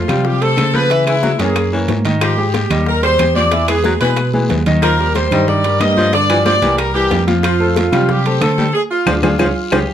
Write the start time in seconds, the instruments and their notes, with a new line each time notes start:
Already playing: horn section F4
0.08 tine electric piano C3, grand piano F3 F4 F5, baritone saxophone G3, high bongo, high conga, low conga, high timbale, short guiro, claves
0.25 horn section G4, high bongo, high conga, long guiro
0.41 grand piano A3 A4 C5, horn section A4, high bongo, high conga, high timbale
0.57 tine electric piano C#3, grand piano A3 A4 C5, high bongo, low bongo, high conga, high timbale, short guiro, claves
0.74 baritone saxophone F3, horn section B4, high conga, short guiro
0.90 grand piano E3 E4 E5, high bongo, high conga, high timbale, long guiro
1.06 baritone saxophone E3, grand piano G#3 G#4 B4, horn section E4, high bongo, high conga, high timbale, claves
1.23 baritone saxophone F#3, high bongo, high conga, short guiro
1.39 tine electric piano F#2, baritone saxophone E3, grand piano A#3 A#4 C#5, horn section G#4, high bongo, high conga, high timbale, short guiro
1.56 high bongo, high conga, high timbale, long guiro, claves
1.72 baritone saxophone E3, grand piano A#3 A#4 C#5, high bongo, high conga
1.88 tine electric piano G#2, high bongo, low bongo, high conga, high timbale, low timbale, short guiro
2.05 grand piano D#3 D#4 D#5, high conga, high timbale, short guiro
2.21 baritone saxophone F3, horn section G4, high bongo, high conga, high timbale, long guiro, claves
2.38 grand piano G#3 G4 G#4, high bongo, high conga
2.54 horn section G4, high bongo, high conga, high timbale, short guiro
2.70 tine electric piano D#2, grand piano D#3 D#4 D#5, baritone saxophone G3, high bongo, high conga, low conga, high timbale, short guiro, claves
2.86 horn section A#4, high bongo, high conga, long guiro
3.03 grand piano G3 G4 G#4, horn section C5, high bongo, high conga, high timbale
3.19 tine electric piano E2, grand piano G#3 G4 G#4, high bongo, low bongo, high conga, high timbale, short guiro, claves
3.35 baritone saxophone F3, horn section D5, high conga, short guiro
3.51 grand piano E3 E4 E5, high bongo, high conga, high timbale, long guiro
3.68 baritone saxophone E3, grand piano G#3 G#4 B4, horn section G#4, high bongo, high conga, high timbale, claves
3.84 baritone saxophone F#3, high bongo, high conga, short guiro
4.00 tine electric piano B2, baritone saxophone E3, grand piano G#3 G#4 B4, horn section B4, high bongo, high conga, high timbale, short guiro
4.16 high bongo, high conga, high timbale, long guiro, claves
4.33 baritone saxophone E3, grand piano G#3 G#4 B4, high bongo, high conga
4.49 tine electric piano D#2, high bongo, low bongo, low conga, high timbale, low timbale, short guiro
4.66 grand piano D#3 D#4 D#5, low conga, high timbale, short guiro
4.82 baritone saxophone F3, horn section A#4, high bongo, high timbale, long guiro, claves
4.99 grand piano G3 G4 A#4, high bongo, high conga
5.15 horn section C5, high bongo, high conga, high timbale, short guiro
5.31 tine electric piano G2, grand piano D#3 D#4 D#5, baritone saxophone G3, high bongo, high conga, low conga, high timbale, short guiro, claves
5.48 horn section D5, high bongo, high conga, low conga, long guiro
5.64 grand piano G3 G4 A#4, high bongo, high conga, high timbale
5.80 tine electric piano G2, grand piano G3 G4 A#4, horn section D#5, high bongo, low bongo, high conga, high timbale, short guiro, claves
5.97 baritone saxophone F3, high conga, short guiro
6.13 grand piano D3 D4 D5, horn section D5, high bongo, high conga, high timbale, long guiro
6.30 baritone saxophone E3, grand piano F3 F4 G4, high bongo, high timbale, claves
6.45 baritone saxophone F3, horn section D5, high bongo, high conga, short guiro
6.62 tine electric piano C2, baritone saxophone E3, grand piano G3 G4 A#4, high bongo, high conga, high timbale, short guiro
6.78 horn section A#4, high bongo, high timbale, long guiro, claves
6.94 baritone saxophone E3, grand piano G3 G4 A#4, horn section G4, high bongo, high conga
7.11 tine electric piano F2, high bongo, low bongo, high conga, high timbale, low timbale, short guiro
7.27 grand piano F3 F4 F5, high conga, high timbale, short guiro
7.43 baritone saxophone F3, horn section F4, high bongo, high conga, high timbale, long guiro, claves
7.60 grand piano A3 A4 C5, high bongo, high conga
7.76 horn section F4, high bongo, high conga, high timbale, short guiro
7.92 tine electric piano C3, grand piano F3 F4 F5, baritone saxophone G3, high bongo, high conga, low conga, high timbale, short guiro, claves
8.09 horn section G4, high bongo, high conga, low conga, long guiro
8.25 grand piano A3 A4 C5, high bongo, high conga, high timbale
8.41 tine electric piano D3, grand piano A3 A4 C5, horn section A4, high bongo, low bongo, high conga, high timbale, short guiro, claves
8.58 baritone saxophone G3, high conga, short guiro
8.74 horn section G#4
8.90 horn section F4
9.06 tine electric piano D2, baritone saxophone F3, grand piano D4 F4 G#4, low bongo, low conga, high timbale, long guiro, claves
9.16 horn section G4
9.22 tine electric piano D2, baritone saxophone F3, grand piano D4 F4 G#4, horn section F4, low bongo, low conga, high timbale, long guiro, claves
9.39 tine electric piano C#2, baritone saxophone F3, grand piano C#4 F4 G#4, low bongo, low conga, high timbale, long guiro, claves
9.72 tine electric piano C#2, baritone saxophone F3, grand piano C#4 F4 G#4, horn section G4, low bongo, low conga, high timbale, long guiro, claves